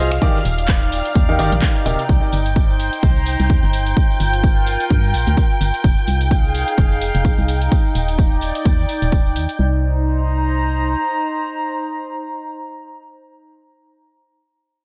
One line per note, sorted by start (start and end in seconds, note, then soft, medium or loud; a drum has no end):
0.00 0.19 C2 medium
0.00 0.13 F4 medium
0.00 0.97 F4 medium
0.00 0.13 G#4 medium
0.00 0.13 C5 medium
0.00 0.13 D#5 medium
0.00 0.22 D#5 medium
0.00 2.10 F5 medium
0.00 0.22 G#5 loud
0.00 2.10 F6 medium
0.12 finger snap medium
0.12 closed hi-hat medium
0.12 tambourine soft
0.12 shaker soft
0.22 0.36 D#3 medium
0.22 3.97 D#4 medium
0.22 0.36 D#4 medium
0.22 0.36 G4 medium
0.22 0.36 A#4 medium
0.22 0.36 D5 loud
0.22 kick loud
0.22 closed hi-hat soft
0.22 closed hi-hat medium
0.22 tambourine soft
0.22 shaker soft
0.31 2.85 D5 medium
0.31 tambourine soft
0.35 snare medium
0.43 1.02 D#1 medium
0.43 2.85 G5 medium
0.43 closed hi-hat medium
0.43 open hi-hat loud
0.43 tambourine medium
0.43 shaker medium
0.58 closed hi-hat medium
0.58 closed hi-hat soft
0.58 tambourine soft
0.58 shaker soft
0.68 kick loud
0.68 snare loud
0.68 clap loud
0.68 closed hi-hat soft
0.68 closed hi-hat medium
0.68 tambourine soft
0.68 shaker soft
0.82 closed hi-hat soft
0.82 tambourine soft
0.92 open hi-hat loud
0.92 open hi-hat medium
0.92 tambourine medium
0.92 shaker medium
1.05 closed hi-hat medium
1.05 tambourine soft
1.05 shaker soft
1.15 1.40 D#2 medium
1.15 kick loud
1.15 closed hi-hat soft
1.15 tambourine medium
1.15 shaker soft
1.29 1.37 D#3 medium
1.29 1.37 D#4 medium
1.29 1.37 G4 medium
1.29 1.37 A#4 medium
1.29 1.37 F5 medium
1.29 tambourine soft
1.39 1.50 G1 medium
1.39 1.53 D#3 medium
1.39 1.53 D#4 medium
1.39 1.53 G4 medium
1.39 1.53 A#4 medium
1.39 1.53 D5 medium
1.39 snare soft
1.39 closed hi-hat medium
1.39 open hi-hat loud
1.39 tambourine loud
1.39 shaker medium
1.52 1.61 A#1 medium
1.52 closed hi-hat medium
1.52 tambourine soft
1.52 shaker soft
1.62 kick loud
1.62 snare loud
1.62 clap loud
1.62 closed hi-hat soft
1.62 closed hi-hat medium
1.62 tambourine soft
1.62 shaker soft
1.75 tambourine soft
1.86 1.97 D#1 medium
1.86 2.00 C3 medium
1.86 2.00 D#4 medium
1.86 2.00 G4 medium
1.86 2.00 A#4 medium
1.86 2.00 D5 medium
1.86 closed hi-hat medium
1.86 open hi-hat loud
1.86 tambourine medium
1.86 shaker medium
1.98 closed hi-hat medium
1.98 tambourine soft
1.98 shaker soft
2.09 2.20 C2 medium
2.09 9.60 G5 medium
2.09 9.60 G6 medium
2.09 kick loud
2.09 closed hi-hat soft
2.09 tambourine soft
2.21 4.72 C5 medium
2.21 tambourine soft
2.32 2.89 G1 medium
2.32 open hi-hat medium
2.32 tambourine medium
2.45 closed hi-hat medium
2.45 tambourine soft
2.56 kick loud
2.56 closed hi-hat soft
2.56 tambourine medium
2.62 4.72 A#5 medium
2.70 tambourine soft
2.79 open hi-hat medium
2.79 tambourine medium
2.93 closed hi-hat medium
2.93 tambourine soft
3.03 3.36 C2 medium
3.03 kick loud
3.03 closed hi-hat soft
3.03 tambourine medium
3.16 tambourine soft
3.26 open hi-hat loud
3.26 tambourine medium
3.39 3.51 C2 loud
3.39 closed hi-hat medium
3.39 tambourine soft
3.50 3.61 D#2 loud
3.50 kick loud
3.50 closed hi-hat soft
3.50 tambourine soft
3.63 3.94 G1 loud
3.63 tambourine soft
3.73 open hi-hat medium
3.73 tambourine medium
3.86 closed hi-hat medium
3.86 tambourine soft
3.97 6.60 F4 medium
3.97 kick loud
3.97 closed hi-hat soft
3.97 tambourine soft
4.11 6.60 A#4 medium
4.11 tambourine soft
4.20 4.77 G1 medium
4.20 open hi-hat medium
4.20 tambourine medium
4.24 6.60 G5 medium
4.33 closed hi-hat medium
4.33 tambourine soft
4.44 kick loud
4.44 closed hi-hat soft
4.44 tambourine soft
4.57 tambourine soft
4.66 open hi-hat medium
4.66 tambourine medium
4.80 closed hi-hat medium
4.80 tambourine soft
4.90 5.15 G2 medium
4.90 kick loud
4.90 closed hi-hat soft
4.90 tambourine soft
5.04 tambourine soft
5.14 5.25 A#1 medium
5.14 open hi-hat medium
5.14 tambourine medium
5.27 5.36 D2 medium
5.27 closed hi-hat medium
5.27 tambourine soft
5.37 kick loud
5.37 closed hi-hat soft
5.37 tambourine soft
5.50 tambourine soft
5.61 5.72 G1 loud
5.61 open hi-hat medium
5.61 tambourine medium
5.74 closed hi-hat medium
5.74 tambourine soft
5.84 5.95 F1 medium
5.84 9.58 D#4 medium
5.84 kick loud
5.84 closed hi-hat medium
5.84 tambourine soft
5.97 tambourine soft
6.03 8.47 F5 medium
6.03 tambourine medium
6.08 6.64 C2 medium
6.08 open hi-hat medium
6.12 7.72 G#4 medium
6.21 closed hi-hat medium
6.21 tambourine soft
6.31 kick loud
6.31 closed hi-hat medium
6.31 tambourine soft
6.45 tambourine soft
6.54 open hi-hat medium
6.54 tambourine medium
6.67 closed hi-hat medium
6.67 tambourine soft
6.78 7.11 F1 medium
6.78 kick loud
6.78 closed hi-hat soft
6.78 tambourine soft
6.91 tambourine soft
7.01 open hi-hat medium
7.01 tambourine medium
7.15 7.26 F1 loud
7.15 closed hi-hat medium
7.15 tambourine soft
7.25 7.36 G#1 medium
7.25 kick loud
7.25 closed hi-hat soft
7.25 tambourine soft
7.38 7.69 C2 loud
7.38 tambourine soft
7.48 open hi-hat medium
7.48 tambourine medium
7.61 closed hi-hat medium
7.61 tambourine soft
7.72 kick loud
7.72 closed hi-hat medium
7.72 tambourine soft
7.85 tambourine soft
7.94 8.52 D#1 medium
7.94 9.59 D5 medium
7.94 open hi-hat medium
7.94 tambourine medium
8.08 closed hi-hat medium
8.08 tambourine soft
8.19 9.59 G5 medium
8.19 kick loud
8.19 closed hi-hat medium
8.19 tambourine soft
8.32 tambourine soft
8.41 open hi-hat medium
8.41 tambourine medium
8.55 closed hi-hat medium
8.55 tambourine soft
8.65 8.86 D#2 medium
8.65 kick loud
8.65 closed hi-hat soft
8.65 tambourine medium
8.79 tambourine soft
8.89 open hi-hat medium
8.89 tambourine medium
9.02 9.37 D#1 medium
9.02 closed hi-hat medium
9.02 tambourine soft
9.12 kick loud
9.12 closed hi-hat soft
9.12 tambourine soft
9.26 tambourine soft
9.36 9.47 D#2 medium
9.36 open hi-hat medium
9.36 tambourine medium
9.49 closed hi-hat medium
9.49 tambourine soft
9.59 10.96 C2 medium
9.59 13.67 D#4 medium
9.67 13.75 C5 medium
9.74 13.83 A#5 medium